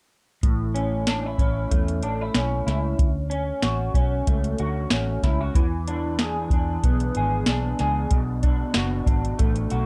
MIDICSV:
0, 0, Header, 1, 4, 480
1, 0, Start_track
1, 0, Key_signature, 3, "major"
1, 0, Tempo, 638978
1, 331, Time_signature, 4, 2, 24, 8
1, 7406, End_track
2, 0, Start_track
2, 0, Title_t, "Clean electric guitar"
2, 0, Program_c, 0, 27
2, 324, Note_on_c, 0, 45, 67
2, 559, Note_on_c, 0, 61, 51
2, 808, Note_on_c, 0, 62, 52
2, 946, Note_off_c, 0, 62, 0
2, 946, Note_on_c, 0, 64, 45
2, 1041, Note_off_c, 0, 61, 0
2, 1044, Note_on_c, 0, 61, 52
2, 1286, Note_on_c, 0, 57, 55
2, 1523, Note_off_c, 0, 64, 0
2, 1526, Note_on_c, 0, 62, 54
2, 1662, Note_off_c, 0, 62, 0
2, 1662, Note_on_c, 0, 64, 49
2, 1767, Note_off_c, 0, 61, 0
2, 1770, Note_on_c, 0, 61, 52
2, 1994, Note_off_c, 0, 64, 0
2, 2003, Note_on_c, 0, 64, 57
2, 2249, Note_off_c, 0, 45, 0
2, 2301, Note_off_c, 0, 64, 0
2, 2475, Note_off_c, 0, 61, 0
2, 2478, Note_on_c, 0, 61, 51
2, 2730, Note_on_c, 0, 66, 51
2, 2956, Note_off_c, 0, 61, 0
2, 2966, Note_on_c, 0, 61, 52
2, 3208, Note_off_c, 0, 57, 0
2, 3211, Note_on_c, 0, 57, 53
2, 3445, Note_off_c, 0, 66, 0
2, 3454, Note_on_c, 0, 66, 58
2, 3686, Note_off_c, 0, 61, 0
2, 3695, Note_on_c, 0, 61, 49
2, 3930, Note_off_c, 0, 66, 0
2, 3933, Note_on_c, 0, 64, 55
2, 4061, Note_off_c, 0, 64, 0
2, 4061, Note_on_c, 0, 66, 48
2, 4172, Note_on_c, 0, 52, 65
2, 4224, Note_off_c, 0, 66, 0
2, 4226, Note_off_c, 0, 57, 0
2, 4227, Note_off_c, 0, 61, 0
2, 4415, Note_on_c, 0, 62, 50
2, 4666, Note_on_c, 0, 68, 58
2, 4903, Note_off_c, 0, 62, 0
2, 4906, Note_on_c, 0, 62, 48
2, 5145, Note_on_c, 0, 59, 55
2, 5376, Note_off_c, 0, 68, 0
2, 5385, Note_on_c, 0, 68, 59
2, 5623, Note_off_c, 0, 62, 0
2, 5626, Note_on_c, 0, 62, 50
2, 5853, Note_off_c, 0, 68, 0
2, 5862, Note_on_c, 0, 68, 57
2, 6094, Note_off_c, 0, 52, 0
2, 6095, Note_on_c, 0, 47, 64
2, 6151, Note_off_c, 0, 68, 0
2, 6331, Note_off_c, 0, 62, 0
2, 6334, Note_on_c, 0, 62, 51
2, 6580, Note_on_c, 0, 66, 55
2, 6799, Note_off_c, 0, 62, 0
2, 6808, Note_on_c, 0, 62, 50
2, 7050, Note_off_c, 0, 59, 0
2, 7053, Note_on_c, 0, 57, 56
2, 7288, Note_off_c, 0, 66, 0
2, 7297, Note_on_c, 0, 66, 56
2, 7406, Note_off_c, 0, 47, 0
2, 7406, Note_off_c, 0, 57, 0
2, 7406, Note_off_c, 0, 62, 0
2, 7406, Note_off_c, 0, 66, 0
2, 7406, End_track
3, 0, Start_track
3, 0, Title_t, "Fingered electric bass"
3, 0, Program_c, 1, 33
3, 327, Note_on_c, 1, 33, 78
3, 1019, Note_off_c, 1, 33, 0
3, 1042, Note_on_c, 1, 33, 68
3, 1238, Note_off_c, 1, 33, 0
3, 1287, Note_on_c, 1, 40, 82
3, 1521, Note_off_c, 1, 40, 0
3, 1521, Note_on_c, 1, 33, 67
3, 1718, Note_off_c, 1, 33, 0
3, 1763, Note_on_c, 1, 35, 76
3, 1959, Note_off_c, 1, 35, 0
3, 2003, Note_on_c, 1, 37, 80
3, 2199, Note_off_c, 1, 37, 0
3, 2247, Note_on_c, 1, 38, 81
3, 2634, Note_off_c, 1, 38, 0
3, 2726, Note_on_c, 1, 33, 73
3, 2921, Note_off_c, 1, 33, 0
3, 2962, Note_on_c, 1, 35, 71
3, 3159, Note_off_c, 1, 35, 0
3, 3211, Note_on_c, 1, 37, 84
3, 3404, Note_off_c, 1, 37, 0
3, 3452, Note_on_c, 1, 38, 75
3, 3645, Note_off_c, 1, 38, 0
3, 3689, Note_on_c, 1, 33, 79
3, 3883, Note_off_c, 1, 33, 0
3, 3927, Note_on_c, 1, 37, 72
3, 4122, Note_off_c, 1, 37, 0
3, 4169, Note_on_c, 1, 40, 74
3, 4862, Note_off_c, 1, 40, 0
3, 4887, Note_on_c, 1, 40, 77
3, 5082, Note_off_c, 1, 40, 0
3, 5136, Note_on_c, 1, 35, 85
3, 5328, Note_off_c, 1, 35, 0
3, 5381, Note_on_c, 1, 32, 69
3, 5570, Note_off_c, 1, 32, 0
3, 5607, Note_on_c, 1, 35, 77
3, 5802, Note_off_c, 1, 35, 0
3, 5859, Note_on_c, 1, 37, 76
3, 6049, Note_off_c, 1, 37, 0
3, 6094, Note_on_c, 1, 35, 87
3, 6478, Note_off_c, 1, 35, 0
3, 6575, Note_on_c, 1, 30, 76
3, 6767, Note_off_c, 1, 30, 0
3, 6809, Note_on_c, 1, 32, 72
3, 7003, Note_off_c, 1, 32, 0
3, 7060, Note_on_c, 1, 33, 92
3, 7250, Note_off_c, 1, 33, 0
3, 7301, Note_on_c, 1, 35, 73
3, 7406, Note_off_c, 1, 35, 0
3, 7406, End_track
4, 0, Start_track
4, 0, Title_t, "Drums"
4, 324, Note_on_c, 9, 36, 91
4, 325, Note_on_c, 9, 42, 76
4, 399, Note_off_c, 9, 36, 0
4, 400, Note_off_c, 9, 42, 0
4, 568, Note_on_c, 9, 42, 58
4, 643, Note_off_c, 9, 42, 0
4, 803, Note_on_c, 9, 38, 88
4, 803, Note_on_c, 9, 42, 80
4, 878, Note_off_c, 9, 38, 0
4, 878, Note_off_c, 9, 42, 0
4, 1039, Note_on_c, 9, 36, 75
4, 1047, Note_on_c, 9, 42, 52
4, 1114, Note_off_c, 9, 36, 0
4, 1122, Note_off_c, 9, 42, 0
4, 1288, Note_on_c, 9, 36, 81
4, 1288, Note_on_c, 9, 42, 78
4, 1363, Note_off_c, 9, 36, 0
4, 1363, Note_off_c, 9, 42, 0
4, 1415, Note_on_c, 9, 42, 50
4, 1490, Note_off_c, 9, 42, 0
4, 1522, Note_on_c, 9, 42, 56
4, 1597, Note_off_c, 9, 42, 0
4, 1761, Note_on_c, 9, 38, 100
4, 1765, Note_on_c, 9, 42, 78
4, 1837, Note_off_c, 9, 38, 0
4, 1840, Note_off_c, 9, 42, 0
4, 2012, Note_on_c, 9, 38, 29
4, 2012, Note_on_c, 9, 42, 58
4, 2087, Note_off_c, 9, 38, 0
4, 2087, Note_off_c, 9, 42, 0
4, 2245, Note_on_c, 9, 36, 94
4, 2247, Note_on_c, 9, 42, 74
4, 2320, Note_off_c, 9, 36, 0
4, 2323, Note_off_c, 9, 42, 0
4, 2487, Note_on_c, 9, 42, 56
4, 2562, Note_off_c, 9, 42, 0
4, 2723, Note_on_c, 9, 38, 98
4, 2723, Note_on_c, 9, 42, 80
4, 2798, Note_off_c, 9, 38, 0
4, 2798, Note_off_c, 9, 42, 0
4, 2961, Note_on_c, 9, 36, 70
4, 2969, Note_on_c, 9, 42, 52
4, 3036, Note_off_c, 9, 36, 0
4, 3044, Note_off_c, 9, 42, 0
4, 3209, Note_on_c, 9, 42, 79
4, 3210, Note_on_c, 9, 36, 79
4, 3285, Note_off_c, 9, 36, 0
4, 3285, Note_off_c, 9, 42, 0
4, 3336, Note_on_c, 9, 42, 49
4, 3411, Note_off_c, 9, 42, 0
4, 3444, Note_on_c, 9, 42, 54
4, 3519, Note_off_c, 9, 42, 0
4, 3684, Note_on_c, 9, 38, 90
4, 3687, Note_on_c, 9, 42, 76
4, 3759, Note_off_c, 9, 38, 0
4, 3763, Note_off_c, 9, 42, 0
4, 3929, Note_on_c, 9, 36, 68
4, 3933, Note_on_c, 9, 38, 29
4, 3933, Note_on_c, 9, 42, 56
4, 4004, Note_off_c, 9, 36, 0
4, 4008, Note_off_c, 9, 42, 0
4, 4009, Note_off_c, 9, 38, 0
4, 4169, Note_on_c, 9, 36, 91
4, 4173, Note_on_c, 9, 42, 75
4, 4244, Note_off_c, 9, 36, 0
4, 4248, Note_off_c, 9, 42, 0
4, 4413, Note_on_c, 9, 42, 61
4, 4489, Note_off_c, 9, 42, 0
4, 4648, Note_on_c, 9, 38, 99
4, 4648, Note_on_c, 9, 42, 76
4, 4723, Note_off_c, 9, 38, 0
4, 4724, Note_off_c, 9, 42, 0
4, 4885, Note_on_c, 9, 36, 77
4, 4892, Note_on_c, 9, 42, 50
4, 4960, Note_off_c, 9, 36, 0
4, 4967, Note_off_c, 9, 42, 0
4, 5135, Note_on_c, 9, 42, 77
4, 5136, Note_on_c, 9, 36, 76
4, 5210, Note_off_c, 9, 42, 0
4, 5211, Note_off_c, 9, 36, 0
4, 5259, Note_on_c, 9, 42, 49
4, 5335, Note_off_c, 9, 42, 0
4, 5369, Note_on_c, 9, 42, 56
4, 5444, Note_off_c, 9, 42, 0
4, 5606, Note_on_c, 9, 38, 103
4, 5609, Note_on_c, 9, 42, 74
4, 5681, Note_off_c, 9, 38, 0
4, 5684, Note_off_c, 9, 42, 0
4, 5852, Note_on_c, 9, 38, 29
4, 5852, Note_on_c, 9, 42, 59
4, 5927, Note_off_c, 9, 38, 0
4, 5927, Note_off_c, 9, 42, 0
4, 6089, Note_on_c, 9, 42, 69
4, 6092, Note_on_c, 9, 36, 88
4, 6164, Note_off_c, 9, 42, 0
4, 6167, Note_off_c, 9, 36, 0
4, 6332, Note_on_c, 9, 42, 59
4, 6337, Note_on_c, 9, 36, 77
4, 6407, Note_off_c, 9, 42, 0
4, 6412, Note_off_c, 9, 36, 0
4, 6566, Note_on_c, 9, 38, 89
4, 6566, Note_on_c, 9, 42, 77
4, 6641, Note_off_c, 9, 38, 0
4, 6641, Note_off_c, 9, 42, 0
4, 6809, Note_on_c, 9, 36, 77
4, 6816, Note_on_c, 9, 42, 52
4, 6884, Note_off_c, 9, 36, 0
4, 6891, Note_off_c, 9, 42, 0
4, 6946, Note_on_c, 9, 42, 45
4, 7021, Note_off_c, 9, 42, 0
4, 7055, Note_on_c, 9, 42, 77
4, 7058, Note_on_c, 9, 36, 81
4, 7130, Note_off_c, 9, 42, 0
4, 7133, Note_off_c, 9, 36, 0
4, 7179, Note_on_c, 9, 42, 48
4, 7254, Note_off_c, 9, 42, 0
4, 7289, Note_on_c, 9, 42, 56
4, 7364, Note_off_c, 9, 42, 0
4, 7406, End_track
0, 0, End_of_file